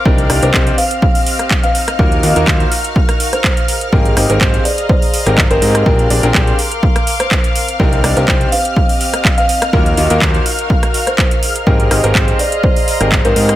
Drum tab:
HH |-xox-xox-oox-xox|-xox-xox-xox-xox|-xox-xox-oox-xox|-xox-xox-xox-xox|
CP |----x-------x---|----x-------x---|----x-------x---|----x-------x---|
SD |--r--------r---r|---------r-r----|--r--------r---r|---------r-r----|
BD |o---o---o---o---|o---o---o---o---|o---o---o---o---|o---o---o---o---|

HH |-xox-xox-oox-xox|-xox-xox-xox-xox|-xox-xox-oox-xox|
CP |----x-------x---|----x-------x---|----x-------x---|
SD |--r--------r---r|---------r-r----|--r--------r---r|
BD |o---o---o---o---|o---o---o---o---|o---o---o---o---|